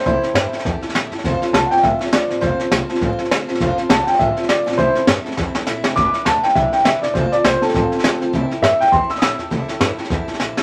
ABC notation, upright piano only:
X:1
M:4/4
L:1/8
Q:"Swing" 1/4=203
K:C
V:1 name="Upright piano"
[Ec]4 z4 | z2 a [^fg] [_e=e]2 d2 | c2 z6 | z2 a [^fg] [_e=e]2 d2 |
[Ec]2 z6 | d'2 a g e g e d | c d c [CA]4- [CA]- | [CA] z e g c' e' [_e'=e']2- |
[_e'=e']4 z4 |]